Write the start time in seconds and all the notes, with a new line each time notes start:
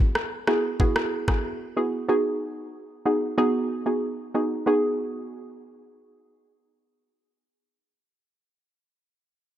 Already playing: B3 E4 F#4 G#4
0.15 cross-stick
0.47 B3 E4 F#4 G#4, cross-stick
0.80 B3 E4 F#4 G#4, kick
0.96 cross-stick
1.28 B3 E4 F#4 G#4, kick, cross-stick
1.77 B3 E4 F#4 G#4
2.08 B3 D#4 F#4 G#4
3.05 B3 D#4 F#4 G#4
3.38 B3 D#4 F#4 G#4
3.86 B3 D#4 F#4 G#4
4.34 B3 D#4 F#4 G#4
4.66 B3 D#4 F#4 G#4